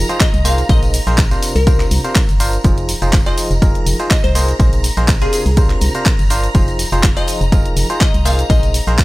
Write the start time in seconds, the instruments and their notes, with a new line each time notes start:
Already playing: string machine A#5
0.09 fm electric piano F3 D#4 F4 G#4 C5, closed hi-hat, shaker
0.20 synth pluck D#5, kick, clap, closed hi-hat, tambourine, shaker
0.34 fm bass C2, closed hi-hat, tambourine, shaker
0.45 fm electric piano A#3 D#4 F4 G#4 C5, synth pluck F5, open hi-hat, tambourine, shaker
0.58 closed hi-hat, tambourine, shaker
0.69 fm bass A#1, fm electric piano A#3 D#4 G#4 A#4 C5, synth pluck D#5, kick, closed hi-hat, tambourine, shaker
0.83 closed hi-hat, tambourine, shaker
0.94 open hi-hat, tambourine, shaker
1.07 fm bass A#1, fm electric piano A#3 D#4 G#4 A#4 C5, closed hi-hat, tambourine, shaker
1.18 kick, clap, closed hi-hat, tambourine, shaker
1.31 fm electric piano C3 D4 F4 A#4 C5, closed hi-hat, tambourine, shaker
1.42 open hi-hat, tambourine, shaker
1.56 fm bass C2, synth pluck A#4, open hi-hat, tambourine, shaker
1.67 fm electric piano C3 D4 F4 A#4 C5, kick, closed hi-hat, tambourine, shaker
1.80 clap, closed hi-hat, tambourine, shaker
1.91 fm bass C2, open hi-hat, tambourine, shaker
2.04 fm electric piano C3 D4 F4 A#4 C5, closed hi-hat, tambourine, shaker
2.15 kick, clap, closed hi-hat, tambourine, shaker
2.29 fm bass G1, closed hi-hat, tambourine, shaker
2.40 fm electric piano D4 F4 A#4 C5, open hi-hat, tambourine, shaker
2.53 closed hi-hat, tambourine, shaker
2.64 fm bass F1, fm electric piano F3 D#4 F4 G#4 C5, string machine A#5, kick, closed hi-hat, tambourine, shaker
2.78 closed hi-hat, tambourine, shaker
2.89 open hi-hat, tambourine, shaker
3.02 fm bass F1, fm electric piano F3 D#4 F4 G#4 C5, closed hi-hat, tambourine, shaker
3.13 kick, clap, closed hi-hat, tambourine, shaker
3.26 fm electric piano F3 D#4 F4 G#4 C5, synth pluck D#5, closed hi-hat, tambourine, shaker
3.37 open hi-hat, tambourine, shaker
3.51 fm bass F1, closed hi-hat, tambourine, shaker
3.62 fm electric piano F3 D#4 F4 G#4 A#4, kick, closed hi-hat, tambourine, shaker
3.75 closed hi-hat, shaker
3.86 fm bass F1, open hi-hat, tambourine, shaker
3.99 fm electric piano F3 D#4 F4 G#4 C5, closed hi-hat, tambourine, shaker
4.11 synth pluck D#5, kick, clap, closed hi-hat, tambourine, shaker
4.24 fm bass C2, synth pluck C5, closed hi-hat, tambourine, shaker
4.35 fm electric piano A#3 D#4 F4 G#4 C5, open hi-hat, tambourine, shaker
4.48 closed hi-hat, tambourine, shaker
4.60 fm bass A#1, fm electric piano A#3 D#4 G#4 A#4 C5, kick, closed hi-hat, tambourine, shaker
4.73 closed hi-hat, tambourine, shaker
4.84 open hi-hat, tambourine, shaker
4.97 fm bass A#1, fm electric piano A#3 D#4 G#4 A#4 C5, closed hi-hat, tambourine, shaker
5.08 kick, clap, closed hi-hat, tambourine, shaker
5.22 fm electric piano C3 D4 F4 A#4 C5, synth pluck G#4, closed hi-hat, tambourine, shaker
5.33 synth pluck G#4, open hi-hat, tambourine, shaker
5.46 fm bass C2, open hi-hat, tambourine, shaker
5.57 fm electric piano C3 D4 F4 A#4 C5, kick, closed hi-hat, tambourine, shaker
5.70 clap, closed hi-hat, shaker
5.81 fm bass C2, open hi-hat, tambourine, shaker
5.94 fm electric piano C3 D4 F4 A#4 C5, closed hi-hat, tambourine, shaker
6.06 kick, clap, closed hi-hat, tambourine, shaker
6.19 fm bass G1, closed hi-hat, tambourine, shaker
6.30 fm electric piano D4 F4 A#4 C5, open hi-hat, tambourine, shaker
6.44 closed hi-hat, tambourine, shaker
6.55 fm bass F1, fm electric piano F3 D#4 F4 G#4 C5, kick, closed hi-hat, tambourine, shaker
6.68 closed hi-hat, tambourine, shaker
6.79 open hi-hat, tambourine, shaker
6.92 fm bass F1, fm electric piano F3 D#4 F4 G#4 C5, closed hi-hat, tambourine, shaker
7.03 kick, clap, closed hi-hat, shaker
7.16 fm electric piano F3 D#4 F4 G#4 C5, synth pluck D#5, closed hi-hat, tambourine, shaker
7.27 open hi-hat, tambourine, shaker
7.41 fm bass F1, closed hi-hat, tambourine, shaker
7.52 fm electric piano F3 D#4 F4 G#4 A#4, kick, closed hi-hat, tambourine, shaker
7.66 closed hi-hat, shaker
7.76 fm bass F1, open hi-hat, tambourine, shaker
7.90 fm electric piano F3 D#4 F4 G#4 C5, closed hi-hat, tambourine, shaker
8.01 synth pluck D#5, kick, clap, closed hi-hat, tambourine, shaker
8.14 fm bass C2, closed hi-hat, tambourine, shaker
8.25 fm electric piano A#3 D#4 F4 G#4 C5, synth pluck F5, open hi-hat, tambourine, shaker
8.39 closed hi-hat, tambourine, shaker
8.50 fm bass A#1, fm electric piano A#3 D#4 G#4 A#4 C5, synth pluck D#5, kick, closed hi-hat, tambourine, shaker
8.63 closed hi-hat, tambourine, shaker
8.74 open hi-hat, tambourine, shaker
8.87 fm bass A#1, fm electric piano A#3 D#4 G#4 A#4 C5, closed hi-hat, tambourine, shaker
8.98 kick, clap, closed hi-hat, tambourine, shaker